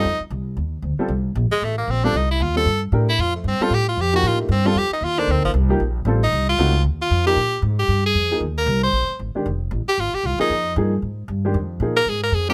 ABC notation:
X:1
M:4/4
L:1/8
Q:"Swing" 1/4=230
K:Fmix
V:1 name="Tenor saxophone"
E z6 z | z3 _A, =A, B, C D | E =E F A2 z2 E | F A, C F G F G _G |
F A, C F G E F D | C F, z4 z E- | E F3 z F2 G- | [K:Cm] G2 z G2 A3 |
z B2 c3 z2 | z3 G F G F E- | E2 z6 | z3 B A B A G |]
V:2 name="Upright piano"
z6 z [G,CFA] | z6 z [G,CFA] | z3 [G,CFA] z2 [A,DGB] z | z3 [G,CFA] z3 [F,B,EG]- |
[F,B,EG]2 z [G,CFA] z3 [B,EAc]- | [B,EAc]2 z [F,B,EG] z2 [G,CFA] z | z2 [A,CE_G] z4 [F,B,E=G] | [K:Cm] z6 z [F,B,EA] |
z6 z [E,A,DG] | z6 z [F,B,EA] | z2 [F,B,EA] z4 [E,A,DG] | z2 [F,B,EA] z4 [G,CFB] |]
V:3 name="Upright bass" clef=bass
F,, z C,,2 E,,2 D,, z | C,,2 B,,, z A,,,2 B,,,2 | C,,2 E,,2 G,,2 A,,2 | F,,2 G,, z A,,2 F,,2 |
A,,2 G,,2 F,, z E,,2 | (3D,, C,, A,,, C,,2 B,,,2 A,,,2 | C,,2 _D,,2 E,,2 F,,2 | [K:Cm] B,,2 A,,2 G,,2 F,,2 |
E,,2 C,,2 B,,, z A,,, z | F,,,2 =A,,, z _A,,, z C,, z | F,,2 G,,2 A,,2 G,,2 | F,,2 B,,2 A,,2 F,,2 |]